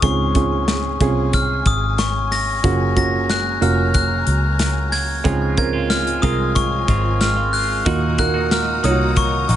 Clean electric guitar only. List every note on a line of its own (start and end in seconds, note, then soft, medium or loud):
5.24 5.74 C#3 medium
5.24 5.74 F3 medium
5.24 5.74 G#3 medium
5.24 5.73 C4 medium
5.24 5.72 F4 medium
5.73 6.22 G#3 soft
5.73 6.23 C4 medium
5.73 6.22 F4 medium
6.22 6.87 F3 medium
6.22 6.87 G#3 medium
6.22 6.88 C4 medium
6.22 6.89 F4 medium
6.88 7.19 F3 soft
6.88 7.20 G#3 medium
6.88 7.21 C4 medium
6.88 7.21 F4 medium
7.20 7.37 F3 medium
7.20 7.37 G#3 medium
7.20 7.37 C4 medium
7.20 7.35 F4 medium
7.36 7.86 G#3 soft
7.36 7.86 C4 soft
7.36 7.86 F4 medium
7.85 8.35 D#3 medium
7.85 8.35 A#3 medium
7.85 8.34 D#4 medium
7.85 8.33 F#4 medium
8.34 8.83 A#3 soft
8.34 8.84 D#4 medium
8.34 8.83 F#4 medium
8.83 9.47 D#3 medium
8.83 9.48 A#3 medium
8.83 9.49 D#4 medium
8.83 9.49 F#4 medium
9.48 9.56 D#3 medium
9.48 9.56 A#3 medium
9.48 9.56 D#4 medium
9.48 9.56 F#4 medium